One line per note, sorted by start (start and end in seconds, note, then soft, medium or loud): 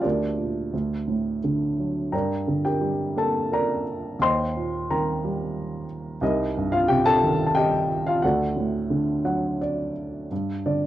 0.02 0.71 D2 medium
0.02 1.39 D4 soft
0.02 1.39 G4 soft
0.02 1.39 A#4 soft
0.02 1.38 D5 medium
0.38 0.72 A#2 soft
0.73 2.10 D2 medium
1.08 2.10 A2 soft
1.44 2.12 D3 soft
1.79 2.13 F#3 soft
2.12 4.17 G2 medium
2.12 2.61 A#4 soft
2.12 2.62 D5 soft
2.12 2.61 G5 soft
2.12 2.66 A#5 medium
2.47 3.82 D3 soft
2.65 3.13 G4 soft
2.65 3.13 A#4 soft
2.65 3.13 G5 medium
2.81 4.16 G3 soft
3.16 4.17 A#3 soft
3.16 3.50 A4 medium
3.16 3.53 A5 medium
3.52 4.17 A#4 medium
3.52 4.18 D5 medium
3.52 4.24 A#5 medium
4.19 6.17 D#2 medium
4.19 4.86 C5 medium
4.19 4.85 D#5 medium
4.19 4.85 G5 medium
4.19 4.92 C6 medium
4.56 5.84 A#2 soft
4.90 6.18 D#3 soft
4.90 5.85 A#4 medium
4.90 5.85 G5 soft
4.90 5.85 A#5 medium
5.24 6.19 G3 soft
6.21 8.18 C2 medium
6.21 6.69 D#4 medium
6.21 6.69 G4 soft
6.21 6.69 A#4 medium
6.21 6.74 D#5 medium
6.57 7.86 G2 medium
6.72 6.88 F4 medium
6.72 6.89 F5 medium
6.88 8.19 C3 medium
6.88 7.04 G4 medium
6.88 7.05 G5 medium
7.05 7.46 A4 medium
7.05 7.45 A5 loud
7.23 8.20 D#3 medium
7.46 7.54 A5 medium
7.55 8.03 G4 medium
7.55 8.03 D#5 medium
7.55 8.07 G5 medium
8.06 8.23 F4 medium
8.06 8.22 F5 medium
8.22 10.28 D2 medium
8.22 9.58 F#4 medium
8.22 9.58 A4 soft
8.22 9.58 D5 soft
8.22 9.23 F#5 medium
8.56 9.92 A2 medium
8.90 10.27 D3 soft
9.25 10.27 F#3 soft
9.25 9.58 F#5 medium
9.61 10.27 D5 medium
10.32 10.87 G2 soft
10.66 10.87 D3 soft
10.66 10.87 D5 medium